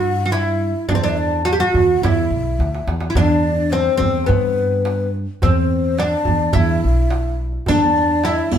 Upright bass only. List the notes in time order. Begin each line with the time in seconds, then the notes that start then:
Already playing: G2
0.89 E2
1.74 E2
2.02 E2
2.30 B1
2.59 D2
2.87 E2
3.15 E2
4.00 E2
4.29 G2
5.43 E2
6.27 E2
6.56 E2
6.84 B1
7.69 E2
8.53 E2